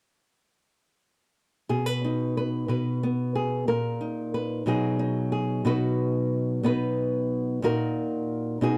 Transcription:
1.69 2.64 B2 medium
1.69 1.86 G#4 medium
1.86 2.36 B4 soft
2.04 3.03 D#4 soft
2.37 2.66 B4 soft
2.68 3.63 B2 medium
2.68 3.35 B4 soft
3.03 3.68 B3 soft
3.35 3.68 G#4 soft
3.68 4.62 A#2 medium
3.68 4.34 A#4 medium
4.01 4.62 D#4 soft
4.34 4.63 B4 medium
4.66 5.61 B2 medium
4.66 7.62 F#3 soft
4.66 4.98 D#4 soft
4.66 5.62 F#4 soft
4.66 5.31 G#4 medium
4.99 5.61 D#4 soft
5.32 5.65 G#4 medium
5.65 6.60 B2 medium
5.65 6.64 D#4 soft
5.65 6.60 F#4 medium
5.65 6.61 B4 medium
6.63 7.58 B2 medium
6.63 7.63 B3 soft
6.63 7.64 D#4 soft
6.63 7.59 B4 medium
7.62 8.57 A#2 medium
7.62 8.58 D#4 medium
7.62 8.58 F#4 medium
7.62 8.58 A#4 medium
8.61 8.78 B2 medium
8.61 8.78 D#4 soft
8.61 8.78 F#4 medium
8.61 8.78 G#4 medium

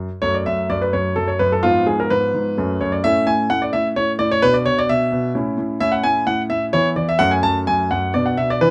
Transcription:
0.22 0.45 F#2 soft
0.22 1.60 F#3 soft
0.22 1.60 A3 soft
0.22 0.34 C#5 medium
0.34 0.46 D5 medium
0.46 0.68 F#2 soft
0.46 0.70 E5 medium
0.70 0.92 F#2 soft
0.70 0.82 D5 medium
0.82 0.93 B4 medium
0.93 1.15 F#2 soft
0.93 1.14 C#5 medium
1.16 1.38 F#2 soft
1.16 1.28 A4 medium
1.28 1.40 C#5 medium
1.39 1.63 F#2 soft
1.39 1.52 B4 medium
1.52 1.64 A4 medium
1.63 1.85 G#2 soft
1.63 2.53 F3 soft
1.63 2.53 B3 soft
1.63 1.85 F4 medium
1.87 2.09 G#2 soft
1.87 1.99 G#4 medium
2.00 2.11 A#4 medium
2.10 2.33 G#2 soft
2.10 2.80 B4 medium
2.34 2.57 G#2 soft
2.57 2.79 F#2 medium
2.57 3.00 A3 soft
2.57 3.01 C#4 soft
2.81 3.03 F#2 soft
2.81 2.92 C#5 medium
2.92 3.04 D5 medium
3.04 3.25 A2 medium
3.04 4.39 A3 soft
3.04 4.39 C#4 soft
3.04 3.27 E5 loud
3.27 3.49 A2 medium
3.27 3.50 G#5 medium
3.50 3.72 A2 medium
3.50 3.61 F#5 medium
3.62 3.73 D5 medium
3.73 3.95 A2 soft
3.73 3.87 E5 medium
3.96 4.18 A2 soft
3.96 4.10 C#5 medium
4.19 4.42 A2 soft
4.19 4.31 D5 medium
4.31 4.43 C#5 medium
4.42 4.64 B2 medium
4.42 5.32 D4 soft
4.42 4.54 B4 loud
4.54 4.66 D5 medium
4.66 4.88 B2 soft
4.66 4.78 C#5 medium
4.79 4.90 D5 medium
4.89 5.11 B2 medium
4.89 5.31 E5 medium
5.12 5.35 B2 medium
5.35 5.56 A2 medium
5.35 5.78 C#4 soft
5.35 5.78 E4 soft
5.58 5.79 A2 medium
5.80 6.02 A2 medium
5.80 6.69 C#4 soft
5.80 6.69 E4 soft
5.80 5.93 E5 medium
5.92 6.04 F#5 medium
6.04 6.25 A2 soft
6.04 6.25 G#5 medium
6.27 6.49 A2 medium
6.27 6.41 F#5 medium
6.50 6.73 A2 soft
6.50 6.64 E5 medium
6.73 6.95 E3 medium
6.73 7.17 B3 soft
6.73 7.17 E4 soft
6.73 6.87 C#5 medium
6.96 7.19 E3 soft
6.96 7.08 D5 medium
7.09 7.20 E5 medium
7.19 7.42 F#2 medium
7.19 8.10 A3 soft
7.19 8.10 C#4 soft
7.19 7.31 F#5 loud
7.31 7.44 G#5 medium
7.43 7.66 F#2 soft
7.43 7.58 A5 medium
7.67 7.90 F#2 soft
7.67 7.91 G#5 medium
7.91 8.14 F#2 soft
7.91 8.12 F#5 medium
8.14 8.36 B2 medium
8.14 8.58 B3 soft
8.14 8.58 D4 soft
8.14 8.26 D5 medium
8.26 8.38 F#5 medium
8.37 8.61 B2 soft
8.37 8.50 E5 medium
8.50 8.62 D5 medium
8.61 8.71 E3 medium
8.61 8.71 D4 soft
8.61 8.71 E4 soft
8.61 8.71 B4 medium

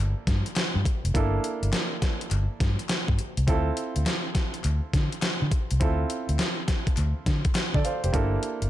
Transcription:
0.00 0.13 G1 medium
0.00 1.10 A#3 medium
0.00 1.11 D4 medium
0.00 1.11 E4 medium
0.00 1.11 A4 medium
0.27 0.42 G2 medium
0.27 kick medium
0.27 snare medium
0.27 closed hi-hat medium
0.46 closed hi-hat soft
0.56 snare loud
0.56 clap medium
0.56 closed hi-hat medium
0.75 0.83 G2 loud
0.85 kick medium
0.85 closed hi-hat medium
1.04 1.12 F1 medium
1.04 closed hi-hat medium
1.14 1.37 G1 loud
1.14 3.43 A#3 medium
1.14 3.44 D4 medium
1.14 3.44 E4 medium
1.14 3.45 A4 medium
1.14 kick loud
1.14 closed hi-hat medium
1.44 closed hi-hat medium
1.63 1.71 G1 medium
1.63 closed hi-hat medium
1.73 snare loud
1.73 clap medium
1.73 closed hi-hat medium
2.02 kick medium
2.02 snare medium
2.02 closed hi-hat medium
2.21 closed hi-hat soft
2.31 2.46 G1 medium
2.31 clap medium
2.31 closed hi-hat medium
2.60 2.75 G2 medium
2.60 kick medium
2.60 snare medium
2.60 closed hi-hat medium
2.79 closed hi-hat soft
2.89 snare loud
2.89 clap medium
2.89 closed hi-hat medium
3.08 3.17 G2 medium
3.08 kick medium
3.19 closed hi-hat medium
3.37 3.45 C2 medium
3.37 closed hi-hat medium
3.47 3.70 D2 loud
3.47 5.76 C4 medium
3.47 5.77 E4 medium
3.47 5.77 F4 medium
3.47 5.77 A4 medium
3.47 kick loud
3.47 closed hi-hat medium
3.77 closed hi-hat medium
3.96 4.04 D2 medium
3.96 closed hi-hat soft
4.06 snare loud
4.06 clap medium
4.06 closed hi-hat medium
4.35 kick medium
4.35 snare medium
4.35 closed hi-hat medium
4.54 closed hi-hat soft
4.64 4.79 D2 medium
4.64 clap medium
4.64 closed hi-hat medium
4.94 5.08 D3 medium
4.94 kick medium
4.94 snare medium
4.94 closed hi-hat medium
5.12 closed hi-hat soft
5.22 snare loud
5.22 clap loud
5.22 closed hi-hat medium
5.42 5.50 D3 medium
5.52 kick medium
5.52 closed hi-hat medium
5.71 5.79 C2 medium
5.71 closed hi-hat medium
5.80 6.04 D2 loud
5.80 8.09 C4 medium
5.80 8.10 E4 medium
5.80 8.10 F4 medium
5.80 7.53 A4 medium
5.80 kick loud
5.80 closed hi-hat medium
6.10 closed hi-hat medium
6.29 6.37 D2 medium
6.29 closed hi-hat soft
6.39 snare loud
6.39 clap medium
6.39 closed hi-hat medium
6.68 kick medium
6.68 snare medium
6.68 closed hi-hat medium
6.87 kick medium
6.87 closed hi-hat soft
6.97 7.12 D2 medium
6.97 clap medium
6.97 closed hi-hat medium
7.26 7.41 D3 loud
7.26 kick medium
7.26 snare medium
7.26 closed hi-hat medium
7.45 kick medium
7.45 closed hi-hat soft
7.55 snare loud
7.55 clap medium
7.55 closed hi-hat medium
7.74 7.82 D3 medium
7.74 7.85 A4 soft
7.74 7.84 D5 medium
7.74 kick medium
7.85 8.02 C5 medium
7.85 8.03 F5 medium
7.85 closed hi-hat medium
8.04 8.12 F1 medium
8.04 8.32 G4 soft
8.04 8.31 C5 medium
8.04 closed hi-hat medium
8.13 8.36 G1 loud
8.13 8.70 A#3 medium
8.13 8.70 D4 medium
8.13 8.70 E4 medium
8.13 8.70 A4 medium
8.13 kick loud
8.13 closed hi-hat medium
8.43 closed hi-hat medium
8.62 8.70 G1 medium
8.62 closed hi-hat soft

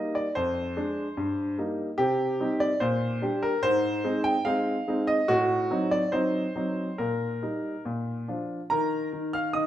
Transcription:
0.00 0.25 G3 soft
0.00 0.25 A#3 soft
0.00 0.25 D#4 medium
0.00 0.16 D#5 medium
0.15 0.36 D5 medium
0.35 0.76 F2 medium
0.35 1.54 C5 loud
0.77 1.06 G#3 medium
0.77 1.06 D4 medium
1.17 1.57 G2 medium
1.58 1.88 G3 medium
1.58 1.88 A#3 soft
1.58 1.88 D#4 medium
1.98 2.39 C3 medium
1.98 2.60 G4 loud
2.40 2.70 G3 medium
2.40 2.70 C4 medium
2.40 2.70 D#4 medium
2.60 2.81 D5 loud
2.80 3.21 A#2 medium
2.80 3.42 C5 loud
3.22 3.52 G3 medium
3.22 3.52 D4 medium
3.22 3.52 G4 medium
3.43 3.63 A#4 loud
3.63 4.03 G#2 medium
3.63 4.21 C5 loud
4.04 4.34 G#3 medium
4.04 4.34 C4 medium
4.04 4.34 D#4 medium
4.24 4.45 G5 loud
4.45 4.75 G#3 medium
4.45 4.76 C4 medium
4.45 4.76 D#4 medium
4.45 5.07 F5 loud
4.88 5.17 G#3 medium
4.88 5.18 C4 medium
4.88 5.18 D#4 medium
5.07 5.28 D#5 loud
5.28 5.69 A2 medium
5.28 5.91 F#4 loud
5.71 6.01 F#3 medium
5.71 6.01 C4 medium
5.71 6.02 D#4 medium
5.91 6.13 D5 loud
6.12 6.43 F#3 medium
6.12 6.44 C4 medium
6.12 6.44 D#4 medium
6.12 6.98 C5 medium
6.56 6.87 F#3 medium
6.56 6.87 C4 medium
6.56 6.87 D#4 medium
6.98 7.41 A#2 medium
6.98 7.81 A#4 medium
7.42 7.73 G3 soft
7.42 7.74 D#4 medium
7.85 8.27 A#2 medium
8.28 8.59 F3 soft
8.28 8.59 D4 soft
8.28 8.59 F4 soft
8.70 9.11 D#3 medium
8.70 9.30 A#4 medium
8.70 9.08 A#5 loud
9.13 9.53 D#3 medium
9.33 9.53 F5 medium
9.33 9.54 F6 loud
9.53 9.67 D#3 medium
9.53 9.67 D#5 medium
9.53 9.67 D#6 medium

